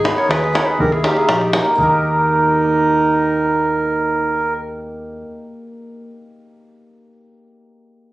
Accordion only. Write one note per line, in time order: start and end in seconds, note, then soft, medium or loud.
0.18 0.29 A#4 medium
0.31 0.55 G#4 medium
0.56 0.68 A#4 medium
0.69 0.80 G#4 medium
0.79 0.91 G4 medium
0.93 1.05 E4 medium
1.03 1.16 D#4 medium
1.17 1.29 E4 medium
1.29 1.66 D#4 medium
1.80 4.54 A#4 medium